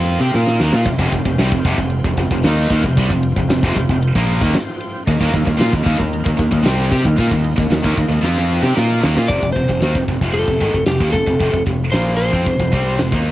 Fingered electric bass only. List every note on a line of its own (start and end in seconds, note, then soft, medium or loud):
0.00 0.17 F2 medium
0.20 0.33 C3 medium
0.35 0.59 A#2 medium
0.60 0.72 D#2 medium
0.73 0.84 A#2 loud
0.85 0.98 F1 medium
0.99 1.11 F1 loud
1.13 1.24 F1 medium
1.25 1.37 F1 medium
1.38 1.51 C2 loud
1.52 1.64 F1 medium
1.65 1.77 F1 medium
1.78 2.03 F1 medium
2.05 2.17 F1 medium
2.17 2.30 F1 medium
2.31 2.43 F1 medium
2.45 2.69 D#2 loud
2.71 2.83 D#2 loud
2.84 2.96 F1 medium
2.96 3.09 C2 medium
3.10 3.34 F1 medium
3.37 3.47 F1 medium
3.48 3.61 F1 medium
3.63 3.75 F1 loud
3.76 3.88 F1 medium
3.89 4.13 F1 medium
4.16 4.40 A#1 medium
4.42 4.54 D#2 loud
5.07 5.19 D#2 medium
5.21 5.33 D#2 loud
5.34 5.46 D#2 medium
5.47 5.59 D#2 medium
5.59 5.72 A#2 medium
5.73 5.85 D#2 medium
5.86 5.98 D#2 medium
6.00 6.24 D#2 medium
6.26 6.38 D#2 medium
6.39 6.51 D#2 medium
6.53 6.64 D#2 medium
6.65 6.89 C2 loud
6.92 7.04 C3 loud
7.06 7.17 D#2 medium
7.18 7.30 A#2 medium
7.32 7.56 D#2 medium
7.58 7.70 D#2 medium
7.71 7.83 D#2 medium
7.85 7.97 D#2 loud
7.98 8.08 D#2 medium
8.09 8.22 D#2 medium
8.23 8.60 F2 medium
8.62 8.75 C3 loud
8.77 9.01 A#2 medium
9.04 9.15 D#2 medium
9.17 9.29 A#2 loud
9.29 9.41 F1 medium
9.42 9.54 F1 medium
9.56 9.68 F1 medium
9.69 9.80 F1 medium
9.81 9.93 D#2 medium
9.95 10.07 F1 medium
10.08 10.20 F1 medium
10.21 10.46 F1 medium
10.48 10.60 F1 medium
10.61 10.73 G#1 medium
10.74 10.86 F1 medium
10.87 10.99 F1 medium
11.00 11.13 D#2 medium
11.14 11.26 F1 medium
11.27 11.39 F1 medium
11.40 11.53 F1 medium
11.53 11.66 F1 medium
11.66 11.91 F1 medium
11.93 12.30 A#1 medium
12.33 12.45 F2 medium
12.46 12.58 F1 medium
12.59 12.71 F1 medium
12.73 12.97 C2 medium
13.00 13.11 F1 medium
13.12 13.32 D#2 loud